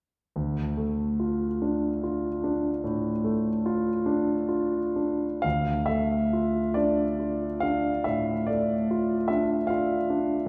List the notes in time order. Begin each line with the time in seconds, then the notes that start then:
0.36 D2
0.77 A3
1.20 F4
1.62 D4
2.04 F4
2.44 D4
2.84 A2
3.24 A3
3.66 F4
4.06 D4
4.49 F4
4.96 D4
5.42 D2 F5
5.86 A3 E5
6.33 F4
6.74 D4 D5
7.19 F4
7.60 D4 F5
8.04 A2 E5
8.47 A3 D5
8.91 F4
9.28 D4 E5
9.67 F4 F5
10.10 D4